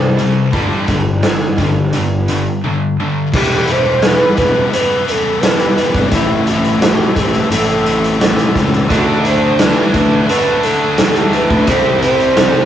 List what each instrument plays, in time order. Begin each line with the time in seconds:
Already playing: picked electric bass G2, distorted electric guitar C3 G3, bansuri C5
0.18 distorted electric guitar C3 G3, closed hi-hat
0.53 picked electric bass G1, distorted electric guitar G2 D3 G3, kick, closed hi-hat
0.88 picked electric bass G1, distorted electric guitar G2 D3, kick, closed hi-hat
1.23 distorted electric guitar G2 D3, snare, closed hi-hat
1.58 picked electric bass G1, distorted electric guitar G2 D3, kick, closed hi-hat
1.93 distorted electric guitar G2 D3, closed hi-hat
2.28 distorted electric guitar G2 D3, closed hi-hat
2.64 distorted electric guitar G2 D3
3.00 distorted electric guitar G2 D3
3.33 picked electric bass E1, distorted electric guitar E3 G3 B3, bansuri G4, kick, crash
3.38 distorted electric guitar E4
3.68 bansuri C5, closed hi-hat
4.02 bansuri B4, snare, closed hi-hat
4.37 picked electric bass E1, bansuri B4, kick, closed hi-hat
4.73 distorted electric guitar E3 G3 B3 E4, bansuri C5, closed hi-hat
4.78 bansuri B4
5.08 bansuri A4 B4, closed hi-hat
5.41 bansuri B4, snare, closed hi-hat
5.60 closed hi-hat
5.78 closed hi-hat
5.95 picked electric bass G#1, kick, closed hi-hat
6.10 picked electric bass A1, distorted electric guitar A2 E3 A3, bansuri E4, kick, closed hi-hat
6.14 distorted electric guitar C4 E4
6.47 bansuri F#4, closed hi-hat
6.51 bansuri E4
6.65 closed hi-hat
6.80 bansuri F#4, snare, closed hi-hat
7.16 picked electric bass A1, bansuri A4, kick, closed hi-hat
7.20 bansuri G4
7.34 closed hi-hat
7.50 picked electric bass A1, distorted electric guitar A2 E3 A3 C4 E4, bansuri A4, closed hi-hat
7.70 closed hi-hat
7.86 closed hi-hat
8.04 closed hi-hat
8.21 snare, closed hi-hat
8.39 closed hi-hat
8.56 picked electric bass C#2, kick, snare, closed hi-hat
8.74 closed hi-hat
8.89 picked electric bass D2, distorted electric guitar D3 F#3 A3 D4 F#4, bansuri F#4, kick, closed hi-hat
9.25 bansuri C5, closed hi-hat
9.59 bansuri C5, snare, closed hi-hat
9.64 bansuri B4
9.94 picked electric bass D2, bansuri B4, kick, closed hi-hat
10.29 distorted electric guitar D3 F#3 A3 D4 F#4, bansuri B4, closed hi-hat
10.63 bansuri A4, closed hi-hat
10.98 bansuri A4, snare, closed hi-hat
11.16 closed hi-hat
11.33 bansuri B4, closed hi-hat
11.50 picked electric bass D2, kick, closed hi-hat
11.67 picked electric bass C2, distorted electric guitar C3 E3 G3 C4 E4 G4, bansuri C5, kick, closed hi-hat
12.02 bansuri C5, closed hi-hat
12.20 closed hi-hat
12.37 snare, closed hi-hat